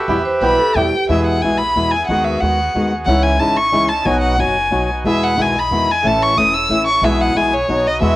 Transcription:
Already playing: bandoneon G4 B4 E5
0.08 upright bass E2, nylon-string guitar B2 E3 G3 B3 E4, bandoneon B3 E4 G4
0.25 vibraphone C5
0.41 upright bass B1, nylon-string guitar B2 E3 G3 B3 E4, bandoneon B3 E4 G4, vibraphone B4, violin B5
0.59 vibraphone A4
0.75 upright bass E2, nylon-string guitar B2 E3 G3 B3 E4, bandoneon B3 E4 G4, vibraphone G4, violin G5
1.09 upright bass E2, nylon-string guitar B2 E3 G#3 B3 E4, bandoneon B3 E4 G#4, violin E5
1.27 violin F#5
1.42 upright bass B1, nylon-string guitar B2 E3 G#3 B3 E4, bandoneon B3 E4 G#4, violin G#5
1.57 violin B5
1.75 upright bass E2, nylon-string guitar B2 E3 G#3 B3 E4, bandoneon B3 E4 G#4
1.91 violin G#5
2.07 upright bass D#2, nylon-string guitar D#3 G#3 B3 F#4, bandoneon B3 F#4 G#4, violin F#5
2.24 violin E5
2.41 upright bass D#2, nylon-string guitar D#3 G#3 B3 F#4, bandoneon B3 F#4 G#4, violin F#5
2.74 upright bass D#2, nylon-string guitar D#3 G#3 B3 F#4, bandoneon B3 F#4 G#4
3.06 upright bass C#2, nylon-string guitar C#3 E3 G#3 D#4 E4, bandoneon C#4 E4, violin F#5
3.23 violin G#5
3.39 nylon-string guitar C#3 E3 G#3 D#4 E4, bandoneon C#4 D#4 E4, violin A5
3.57 violin C#6
3.72 upright bass C#2, nylon-string guitar C#3 E3 G#3 D#4 E4, bandoneon C#4 D#4 E4
3.89 violin A5
4.04 upright bass B1, nylon-string guitar B2 F#3 B3 D#4 F#4, bandoneon B3 D#4 F#4, violin G#5
4.21 violin F#5
4.38 upright bass F#1, nylon-string guitar B2 F#3 B3 D#4 F#4, bandoneon B3 D#4 F#4, violin G#5
4.71 upright bass B1, nylon-string guitar B2 F#3 B3 D#4 F#4, bandoneon B3 D#4 F#4
5.04 upright bass E2, nylon-string guitar B2 G#3 B3 E4, bandoneon E4 G#4, violin E5
5.23 violin F#5
5.37 upright bass B1, nylon-string guitar B2 D#3 G#3 B3 E4, bandoneon D#4 E4 G#4
5.42 violin G#5
5.59 violin B5
5.71 upright bass E2, nylon-string guitar B2 D#3 G#3 B3 E4, bandoneon D#4 E4 G#4
5.91 violin G#5
6.03 upright bass A1, nylon-string guitar E3 A3 C#4 E4, bandoneon C#4 E4 A4, violin A5
6.23 violin C#6
6.37 upright bass E1, nylon-string guitar E3 A3 C#4 E4, bandoneon C#4 E4 A4, violin D#6
6.55 violin E6
6.70 upright bass A1, nylon-string guitar E3 A3 C#4 E4, bandoneon C#4 E4 A4
6.87 violin C#6
7.02 upright bass B1, nylon-string guitar B2 E3 G#3 B3 E4, bandoneon B3 E4 G#4, violin E5
7.21 violin F#5
7.35 upright bass B1, nylon-string guitar B2 E3 G#3 B3 E4, bandoneon B3 E4 G#4, violin G#5
7.54 violin C#5
7.68 upright bass B1, nylon-string guitar B2 F#3 B3 D#4 F#4, bandoneon B3 D#4 F#4
7.87 violin D#5
8.00 upright bass E2, nylon-string guitar B2 E3 G#3 B3 F#4, bandoneon G#3 E4 F#4, violin E5

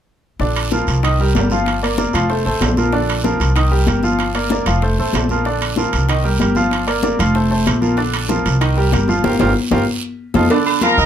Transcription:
0.39 upright bass A#1, grand piano D3 D4 D5, high bongo, high conga, long guiro
0.56 high conga, high timbale
0.71 grand piano F3 F4 A#4, high bongo, high conga, short guiro
0.87 upright bass C2, high bongo, high conga, high timbale, short guiro
1.03 grand piano D#3 D#4 D#5, high bongo, high conga, high timbale, long guiro
1.19 grand piano G3 G4 A#4, high bongo, high conga
1.35 upright bass G1, grand piano G3 G4 A#4, high bongo, low bongo, high conga, high timbale, low timbale, short guiro
1.50 grand piano F3 F4 F5, high bongo, high conga, short guiro
1.66 high bongo, high conga, high timbale, long guiro
1.82 grand piano A#3 A#4 D5, high conga, high timbale
1.98 grand piano A#3 A#4 D5, high bongo, high conga, short guiro
2.13 upright bass F1, grand piano F3 F4 F5, high bongo, high conga, high timbale, short guiro
2.29 grand piano A3 A4 C5, high bongo, high conga, long guiro
2.45 upright bass A1, grand piano A3 A4 C5, high bongo, high conga
2.61 upright bass A#1, high bongo, low bongo, high conga, high timbale, low timbale, short guiro
2.77 grand piano F3 F4 A#4, high bongo, high conga, short guiro
2.92 grand piano D3 D4 D5, high bongo, high conga, long guiro
3.09 high conga, high timbale
3.24 grand piano F3 F4 A#4, high bongo, high conga, short guiro
3.39 upright bass C2, high bongo, high conga, high timbale, short guiro
3.55 grand piano D#3 D#4 D#5, high bongo, high conga, high timbale, long guiro
3.71 grand piano G3 G4 A#4, high bongo, high conga
3.87 upright bass G1, grand piano G3 G4 A#4, high bongo, low bongo, high conga, high timbale, short guiro
4.03 grand piano F3 F4 F5, high bongo, high conga, short guiro
4.19 high bongo, high conga, high timbale, long guiro
4.34 grand piano A#3 A#4 D5, high conga, high timbale
4.50 grand piano A#3 A#4 D5, high bongo, high conga, short guiro
4.66 upright bass F1, grand piano F3 F4 F5, high bongo, high conga, high timbale, short guiro
4.82 grand piano A3 A4 C5, high bongo, high conga, long guiro
4.98 upright bass A1, grand piano A3 A4 C5, high bongo, high conga
5.13 upright bass A#1, high bongo, low bongo, high conga, high timbale, low timbale, short guiro
5.29 grand piano F3 F4 A#4, high bongo, high conga, short guiro
5.45 grand piano D3 D4 D5, high bongo, high conga, long guiro
5.61 high conga, high timbale
5.76 grand piano F3 F4 A#4, high bongo, high conga, short guiro
5.92 upright bass C2, high bongo, high conga, high timbale, short guiro
6.09 grand piano D#3 D#4 D#5, high bongo, high conga, high timbale, long guiro
6.24 grand piano G3 G4 A#4, high bongo, high conga
6.39 upright bass G1, grand piano G3 G4 A#4, high bongo, low bongo, high conga, high timbale, short guiro
6.55 grand piano F3 F4 F5, high bongo, high conga, short guiro
6.71 high bongo, high conga, high timbale, long guiro
6.87 grand piano A#3 A#4 D5, high conga, high timbale
7.03 grand piano A#3 A#4 D5, high bongo, high conga, short guiro
7.18 upright bass F1, grand piano F3 F4 F5, high bongo, high conga, high timbale, short guiro
7.35 grand piano A3 A4 C5, high bongo, high conga, long guiro
7.51 grand piano A3 A4 C5, high bongo, high conga
7.66 upright bass A#1, high bongo, low bongo, high conga, high timbale, short guiro
7.81 grand piano F3 F4 A#4, high bongo, high conga, short guiro
7.97 grand piano D3 D4 D5, high bongo, high conga, long guiro
8.14 high conga, high timbale
8.29 grand piano F3 F4 A#4, high bongo, high conga, short guiro
8.45 upright bass C2, high bongo, high conga, high timbale, short guiro
8.61 grand piano D#3 D#4 D#5, high bongo, high conga, high timbale, long guiro
8.77 grand piano G3 G4 A#4, high bongo, high conga
8.92 upright bass G1, grand piano G3 G4 A#4, high bongo, low bongo, high conga, high timbale, short guiro
9.08 grand piano F3 F4 F5, high bongo, high conga, short guiro
9.24 upright bass G1, grand piano F4 G4 A#4, low bongo, high conga, high timbale, long guiro
9.39 upright bass G1, grand piano F4 G4 A#4, low bongo, high conga, high timbale, long guiro
9.71 upright bass G1, grand piano F4 G4 A#4, low bongo, high conga, high timbale, long guiro
10.34 upright bass F2, grand piano D#4 F4 A4, low bongo, high conga, high timbale, long guiro
10.50 grand piano D3 D4 D5, cowbell, high conga, low agogo, long guiro
10.66 low agogo
10.81 grand piano F3 F4 F5, trumpet section A#4 A#5, cowbell, high conga, low agogo, short guiro
10.98 upright bass C2, grand piano D#4 D#5 D#6, high conga, short guiro

